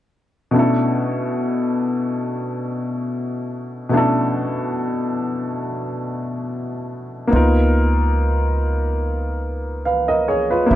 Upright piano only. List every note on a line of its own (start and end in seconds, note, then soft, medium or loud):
0.51 3.87 B2 medium
0.51 3.87 A3 medium
0.51 3.88 C#4 medium
0.56 3.89 D4 medium
0.56 3.90 E4 medium
0.56 3.91 A4 medium
3.89 7.25 B2 medium
3.89 7.26 A3 medium
3.89 7.26 C#4 medium
3.94 7.27 D4 medium
3.94 7.28 E4 medium
3.94 7.29 A4 medium
7.27 10.63 A#3 medium
7.27 10.64 B3 medium
7.31 10.65 D#4 medium
7.31 9.81 F4 medium
7.36 9.82 A#4 medium
9.85 10.06 B4 soft
9.85 10.06 F5 soft
10.08 10.26 A#4 soft
10.08 10.26 D#5 medium
10.28 10.49 G#4 soft
10.28 10.48 C#5 medium
10.50 10.75 F4 soft
10.50 10.75 B4 medium
10.66 10.75 A#3 medium
10.66 10.75 C#4 medium
10.70 10.75 E4 medium
10.70 10.75 G4 medium